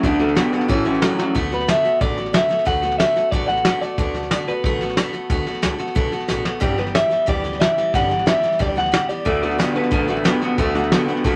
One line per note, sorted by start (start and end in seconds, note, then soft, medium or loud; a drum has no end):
0.03 0.38 D2 medium
0.03 0.20 D3 medium
0.03 0.20 A3 medium
0.03 0.19 B3 medium
0.03 0.66 D4 medium
0.03 0.18 F#4 medium
0.03 kick loud
0.03 snare soft
0.19 0.35 D3 medium
0.19 0.35 A3 soft
0.19 0.36 B3 soft
0.19 0.36 F#4 medium
0.19 snare soft
0.28 snare soft
0.35 0.52 D3 medium
0.35 0.53 A3 medium
0.35 0.52 B3 medium
0.35 0.51 F#4 medium
0.35 snare loud
0.35 hi-hat pedal medium
0.52 0.67 D3 medium
0.52 0.68 A3 soft
0.52 0.69 B3 medium
0.52 0.68 F#4 medium
0.52 muted upright bass stroke medium
0.52 snare soft
0.61 snare soft
0.68 1.04 A1 medium
0.68 0.85 A2 medium
0.68 0.86 E3 medium
0.68 0.85 A3 loud
0.68 0.84 C#4 medium
0.68 0.84 F#4 loud
0.68 kick loud
0.68 snare soft
0.85 1.00 A2 medium
0.85 1.01 E3 medium
0.85 1.02 A3 soft
0.85 1.02 C#4 medium
0.85 1.02 F#4 medium
0.85 snare soft
0.94 snare soft
1.01 1.17 A2 medium
1.01 1.18 E3 medium
1.01 1.17 F#3 loud
1.01 1.19 A3 medium
1.01 1.18 C#4 medium
1.01 1.17 F#4 medium
1.01 snare loud
1.01 hi-hat pedal medium
1.18 1.34 A2 medium
1.18 1.34 F#3 medium
1.18 1.34 A3 soft
1.18 1.35 C#4 medium
1.18 1.35 F#4 medium
1.18 muted upright bass stroke medium
1.18 snare medium
1.35 1.70 D2 medium
1.35 1.51 D3 medium
1.35 1.52 A3 medium
1.35 1.51 B3 loud
1.35 1.50 F#4 loud
1.35 kick loud
1.35 snare soft
1.51 1.67 A3 soft
1.51 1.68 B3 soft
1.51 1.68 F#4 medium
1.51 1.68 B4 medium
1.51 snare soft
1.60 snare soft
1.68 1.84 D3 medium
1.68 1.85 A3 medium
1.68 1.84 B3 medium
1.68 1.83 F#4 medium
1.68 2.01 E5 medium
1.68 snare loud
1.68 hi-hat pedal medium
1.84 2.00 A3 soft
1.84 2.00 B3 soft
1.84 2.01 F#4 medium
1.84 muted upright bass stroke medium
1.84 snare soft
2.01 2.36 A1 medium
2.01 2.17 D3 medium
2.01 2.17 A3 medium
2.01 2.17 B3 medium
2.01 2.16 F#4 medium
2.01 2.34 D5 medium
2.01 kick loud
2.01 snare soft
2.17 2.33 A3 soft
2.17 2.33 B3 soft
2.17 2.34 F#4 medium
2.17 snare soft
2.26 snare soft
2.33 2.50 D3 medium
2.33 2.49 A3 medium
2.33 2.49 B3 medium
2.33 2.48 F#4 medium
2.33 2.65 E5 loud
2.33 snare loud
2.33 hi-hat pedal medium
2.49 2.65 A3 soft
2.49 2.65 B3 medium
2.49 2.65 F#4 medium
2.49 muted upright bass stroke medium
2.49 snare soft
2.59 snare soft
2.65 3.01 D2 medium
2.65 2.82 D3 medium
2.65 2.82 A3 medium
2.65 2.82 B3 medium
2.65 2.81 F#4 medium
2.65 2.97 F#5 loud
2.65 kick loud
2.65 snare soft
2.82 2.98 A3 soft
2.82 3.00 B3 medium
2.82 2.99 F#4 medium
2.82 snare soft
2.91 snare soft
2.98 3.16 D3 medium
2.98 3.16 A3 medium
2.98 3.15 B3 medium
2.98 3.15 F#4 medium
2.98 3.31 E5 loud
2.98 snare loud
2.98 hi-hat pedal medium
3.16 3.32 A3 soft
3.16 3.32 B3 soft
3.16 3.32 F#4 medium
3.16 muted upright bass stroke medium
3.16 snare soft
3.31 3.67 A1 medium
3.31 3.49 D3 medium
3.31 3.49 A3 medium
3.31 3.49 B3 medium
3.31 3.48 F#4 medium
3.31 3.47 D5 loud
3.31 kick loud
3.31 snare soft
3.48 3.65 A3 soft
3.48 3.65 B3 soft
3.48 3.65 F#4 medium
3.48 3.79 F#5 loud
3.48 snare soft
3.57 snare soft
3.65 3.82 D3 medium
3.65 3.82 A3 medium
3.65 3.82 B3 medium
3.65 3.82 F#4 medium
3.65 snare loud
3.65 hi-hat pedal medium
3.81 3.97 A3 soft
3.81 3.98 B3 soft
3.81 3.98 F#4 medium
3.81 4.50 D5 loud
3.81 muted upright bass stroke medium
3.81 snare soft
3.98 4.33 D2 medium
3.98 4.15 D3 medium
3.98 4.15 A3 medium
3.98 4.15 B3 loud
3.98 4.14 F#4 medium
3.98 kick loud
3.98 snare soft
4.14 4.31 A3 soft
4.14 4.31 B3 soft
4.14 4.31 F#4 soft
4.14 snare soft
4.23 snare soft
4.31 4.48 D3 medium
4.31 4.48 A3 medium
4.31 4.48 B3 medium
4.31 4.47 F#4 medium
4.31 snare loud
4.31 hi-hat pedal medium
4.47 4.64 A3 soft
4.47 4.65 B3 soft
4.47 4.64 F#4 medium
4.47 5.10 B4 medium
4.47 muted upright bass stroke medium
4.47 snare soft
4.64 4.99 A1 medium
4.64 4.81 D3 medium
4.64 4.81 A3 medium
4.64 4.81 B3 medium
4.64 4.80 F#4 medium
4.64 kick loud
4.64 snare soft
4.81 4.96 A3 soft
4.81 4.97 B3 medium
4.81 4.97 F#4 medium
4.81 snare soft
4.89 snare soft
4.97 5.14 D3 medium
4.97 5.13 A3 medium
4.97 5.13 B3 medium
4.97 5.12 F#4 medium
4.97 snare loud
4.97 hi-hat pedal medium
5.13 5.29 A3 medium
5.13 5.30 B3 medium
5.13 5.30 F#4 medium
5.13 muted upright bass stroke medium
5.13 snare soft
5.30 5.42 D2 medium
5.30 5.47 D3 medium
5.30 5.47 A3 medium
5.30 5.46 B3 medium
5.30 5.45 F#4 medium
5.30 kick loud
5.30 snare soft
5.46 5.61 A3 soft
5.46 5.62 B3 medium
5.46 5.62 F#4 medium
5.46 snare soft
5.55 snare soft
5.62 5.77 C#2 medium
5.62 5.79 D3 medium
5.62 5.79 A3 medium
5.62 5.78 B3 medium
5.62 5.77 F#4 medium
5.62 snare loud
5.62 hi-hat pedal medium
5.78 5.94 A3 soft
5.78 5.94 B3 medium
5.78 5.95 F#4 medium
5.78 muted upright bass stroke medium
5.78 snare soft
5.87 snare soft
5.95 6.10 B1 medium
5.95 6.12 D3 medium
5.95 6.12 A3 medium
5.95 6.12 B3 loud
5.95 6.11 F#4 loud
5.95 kick loud
5.95 snare soft
6.12 6.27 A3 soft
6.12 6.28 B3 medium
6.12 6.29 F#4 medium
6.12 snare soft
6.20 snare soft
6.28 6.43 A1 medium
6.28 6.45 D3 medium
6.28 6.45 A3 medium
6.28 6.45 B3 medium
6.28 6.44 F#4 medium
6.28 snare medium
6.28 hi-hat pedal medium
6.45 6.60 A3 soft
6.45 6.60 B3 medium
6.45 6.61 F#4 medium
6.45 muted upright bass stroke medium
6.45 snare medium
6.60 6.97 G1 medium
6.60 6.77 G2 medium
6.60 6.78 D3 medium
6.60 6.78 E3 loud
6.60 6.77 G3 loud
6.60 6.77 B3 loud
6.60 6.76 G4 loud
6.60 kick loud
6.60 snare soft
6.78 6.93 E3 soft
6.78 6.94 G3 soft
6.78 6.94 B3 soft
6.78 6.95 G4 medium
6.78 6.84 B4 medium
6.78 snare soft
6.87 snare soft
6.95 7.11 E3 medium
6.95 7.10 G3 medium
6.95 7.10 B3 medium
6.95 7.09 G4 medium
6.95 7.29 E5 loud
6.95 snare loud
6.95 hi-hat pedal medium
7.10 7.26 E3 soft
7.10 7.26 G3 soft
7.10 7.26 B3 soft
7.10 7.27 G4 medium
7.10 muted upright bass stroke medium
7.10 snare soft
7.26 7.63 D2 medium
7.26 7.43 G2 medium
7.26 7.44 D3 medium
7.26 7.44 E3 medium
7.26 7.44 G3 medium
7.26 7.43 B3 medium
7.26 7.43 G4 medium
7.26 7.60 D5 medium
7.26 kick loud
7.26 snare soft
7.44 7.59 E3 soft
7.44 7.60 G3 soft
7.44 7.60 B3 soft
7.44 7.61 G4 medium
7.44 snare soft
7.53 snare soft
7.60 7.77 E3 medium
7.60 7.78 G3 medium
7.60 7.77 B3 medium
7.60 7.77 G4 medium
7.60 7.91 E5 loud
7.60 snare loud
7.60 hi-hat pedal medium
7.78 7.93 E3 soft
7.78 7.94 G3 medium
7.78 7.94 B3 soft
7.78 7.94 G4 medium
7.78 muted upright bass stroke medium
7.78 snare soft
7.94 8.29 G1 medium
7.94 8.10 G2 medium
7.94 8.11 D3 medium
7.94 8.10 E3 medium
7.94 8.10 G3 loud
7.94 8.09 B3 medium
7.94 8.08 G4 medium
7.94 8.25 F#5 loud
7.94 kick loud
7.94 snare soft
8.09 8.25 E3 soft
8.09 8.26 G3 soft
8.09 8.27 B3 soft
8.09 8.26 G4 medium
8.09 snare soft
8.19 snare soft
8.26 8.42 E3 medium
8.26 8.43 G3 medium
8.26 8.42 B3 medium
8.26 8.41 G4 medium
8.26 8.58 E5 medium
8.26 snare loud
8.26 hi-hat pedal medium
8.42 8.58 E3 soft
8.42 8.58 G3 medium
8.42 8.58 B3 medium
8.42 8.59 G4 medium
8.42 muted upright bass stroke medium
8.42 snare soft
8.52 snare soft
8.59 8.95 D2 medium
8.59 8.76 G2 medium
8.59 8.76 D3 medium
8.59 8.76 E3 medium
8.59 8.76 G3 medium
8.59 8.75 B3 medium
8.59 8.74 G4 medium
8.59 8.67 D5 medium
8.59 kick loud
8.59 snare soft
8.76 8.90 E3 soft
8.76 8.91 G3 soft
8.76 8.91 B3 medium
8.76 8.92 G4 medium
8.76 9.09 F#5 loud
8.76 snare soft
8.86 snare soft
8.92 9.09 E3 medium
8.92 9.09 G3 medium
8.92 9.09 B3 medium
8.92 9.08 G4 medium
8.92 snare loud
8.92 hi-hat pedal medium
9.09 9.25 E3 medium
9.09 9.25 G3 medium
9.09 9.24 B3 medium
9.09 9.25 G4 medium
9.09 9.71 D5 medium
9.09 muted upright bass stroke medium
9.09 snare soft
9.25 9.61 D2 medium
9.25 9.42 D3 medium
9.25 9.42 A3 medium
9.25 9.42 B3 medium
9.25 9.41 F#4 medium
9.25 kick loud
9.25 snare soft
9.42 9.57 D3 medium
9.42 9.58 A3 soft
9.42 9.59 B3 soft
9.42 9.59 F#4 medium
9.42 snare soft
9.51 snare soft
9.58 9.75 D3 medium
9.58 9.75 A3 medium
9.58 9.74 B3 medium
9.58 9.73 F#4 medium
9.58 snare loud
9.58 hi-hat pedal medium
9.75 9.90 D3 medium
9.75 9.90 A3 soft
9.75 9.90 B3 medium
9.75 9.92 F#4 medium
9.75 10.38 B4 medium
9.75 muted upright bass stroke medium
9.75 snare soft
9.83 snare soft
9.91 10.27 A1 medium
9.91 10.08 D3 medium
9.91 10.08 A3 medium
9.91 10.07 B3 medium
9.91 10.06 F#4 medium
9.91 kick loud
9.91 snare soft
10.07 10.23 D3 medium
10.07 10.23 A3 soft
10.07 10.24 B3 soft
10.07 10.24 F#4 medium
10.07 snare soft
10.17 snare soft
10.24 10.41 D3 medium
10.24 10.41 A3 medium
10.24 10.42 B3 medium
10.24 10.40 F#4 medium
10.24 snare loud
10.24 hi-hat pedal medium
10.41 10.57 D3 medium
10.41 10.57 A3 medium
10.41 10.57 B3 medium
10.41 10.58 F#4 medium
10.41 muted upright bass stroke medium
10.41 snare soft
10.58 10.93 D2 medium
10.58 10.75 D3 medium
10.58 10.75 A3 loud
10.58 10.75 B3 loud
10.58 10.74 F#4 medium
10.58 kick loud
10.58 snare soft
10.75 10.90 D3 medium
10.75 10.91 A3 medium
10.75 10.92 B3 medium
10.75 10.91 F#4 medium
10.75 snare soft
10.84 snare soft
10.92 11.08 D3 medium
10.92 11.08 A3 medium
10.92 11.09 B3 medium
10.92 11.07 F#4 medium
10.92 snare loud
10.92 hi-hat pedal medium
11.08 11.23 D3 medium
11.08 11.24 A3 medium
11.08 11.24 B3 medium
11.08 11.25 F#4 medium
11.08 muted upright bass stroke medium
11.08 snare soft
11.17 snare soft
11.24 11.36 A1 medium
11.24 11.36 D3 medium
11.24 11.36 A3 medium
11.24 11.36 B3 loud
11.24 11.36 F#4 medium
11.24 kick loud
11.24 snare soft